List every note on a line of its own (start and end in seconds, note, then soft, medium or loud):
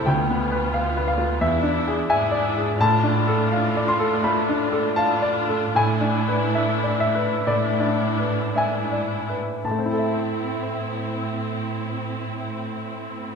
0.06 1.38 D2 soft
0.06 1.42 B3 soft
0.06 1.39 F4 soft
0.06 1.04 G5 medium
0.31 0.66 B3 soft
0.52 0.88 B4 soft
0.74 1.06 F5 soft
0.97 1.32 B4 soft
1.08 1.39 F5 medium
1.18 1.41 F4 soft
1.41 2.76 E2 soft
1.41 2.09 E2 soft
1.41 2.09 D4 soft
1.41 2.08 E4 soft
1.41 2.06 E5 medium
1.63 2.00 D4 soft
1.88 2.24 G#4 soft
2.10 2.78 G#2 soft
2.10 2.78 D4 soft
2.10 2.78 E4 soft
2.10 2.47 E5 soft
2.10 2.76 G#5 medium
2.31 2.70 D5 soft
2.57 2.80 G#4 soft
2.79 5.74 A2 medium
2.79 4.20 A2 soft
2.79 4.93 D4 soft
2.79 4.93 F4 soft
2.79 3.84 A5 medium
3.03 3.42 D4 soft
3.27 3.66 A4 soft
3.52 3.90 F5 soft
3.77 4.15 D5 soft
3.88 4.21 C6 medium
3.99 4.38 A4 soft
4.24 4.62 A3 soft
4.24 4.93 B5 medium
4.49 4.88 D4 soft
4.72 5.12 A4 soft
4.96 5.73 D4 soft
4.96 5.73 F4 soft
4.96 5.38 F5 soft
4.96 5.70 A5 medium
5.22 5.64 D5 soft
5.48 5.74 A4 soft
5.75 8.52 A2 soft
5.75 7.42 A2 soft
5.75 7.43 D4 soft
5.75 7.46 E4 soft
5.75 6.96 G#5 medium
6.01 6.44 D4 soft
6.28 6.73 B4 soft
6.55 6.99 E5 soft
6.84 7.33 D5 soft
7.00 7.43 E5 medium
7.15 7.66 B4 soft
7.47 9.60 A2 soft
7.47 8.54 D4 soft
7.47 8.54 E4 soft
7.47 8.52 D5 medium
7.80 8.40 D4 soft
8.19 8.78 B4 soft
8.55 9.36 G#2 soft
8.55 9.34 D4 soft
8.55 9.34 E4 soft
8.55 9.15 E5 soft
8.55 9.60 G#5 soft
8.92 9.50 D5 soft
9.29 9.63 B4 soft
9.63 13.35 A2 soft
9.63 13.35 C4 soft
9.63 13.35 E4 soft
9.63 13.35 A5 soft
9.71 13.35 A3 soft
9.79 13.35 C4 soft
9.85 13.35 E4 soft
9.92 13.35 A4 soft
9.99 13.35 E5 soft